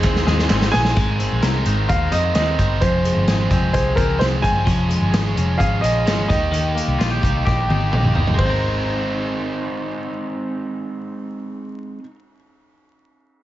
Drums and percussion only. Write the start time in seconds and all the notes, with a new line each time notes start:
0.04 kick, snare, clap
0.16 snare
0.27 snare
0.39 snare
0.50 snare, clap
0.61 snare
0.73 snare
0.85 snare
0.96 kick, closed hi-hat
1.20 closed hi-hat
1.43 snare, closed hi-hat
1.66 closed hi-hat
1.89 kick, closed hi-hat
2.12 closed hi-hat
2.35 snare, closed hi-hat
2.59 kick, closed hi-hat
2.82 kick, closed hi-hat
3.05 closed hi-hat
3.28 snare, closed hi-hat
3.51 kick, closed hi-hat
3.74 kick, closed hi-hat
3.97 kick, closed hi-hat
4.21 snare, closed hi-hat
4.44 kick, closed hi-hat
4.67 kick, closed hi-hat
4.91 closed hi-hat
5.14 snare, closed hi-hat
5.37 closed hi-hat
5.60 kick, closed hi-hat
5.84 closed hi-hat
6.07 snare, closed hi-hat
6.30 kick, closed hi-hat
6.54 closed hi-hat
6.77 closed hi-hat
7.01 snare, closed hi-hat
7.23 kick, closed hi-hat
7.47 kick, snare
7.70 high tom
7.93 mid tom
8.04 mid tom
8.15 floor tom
8.27 floor tom
8.39 kick, ride